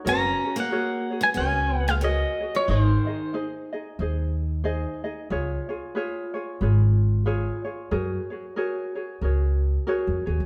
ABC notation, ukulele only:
X:1
M:4/4
L:1/8
Q:"Swing" 1/4=92
K:F#
V:1 name="Ukulele"
[FGAc] [FGc] [FGAc] [FGc] [FGAc]2 [FGAc] [FGc] | [DG^Bd] [DGd] [DGBd] [DGd] [DGBd]2 [DGBd] [DGd] | [EGBc] [EGc] [EGBc] [EGc] [EGBc]2 [EGBc] [EGc] | [FGAc] [FGc] [FGAc] [FGc] [FGAc]2 [FGAc] [FGc] |]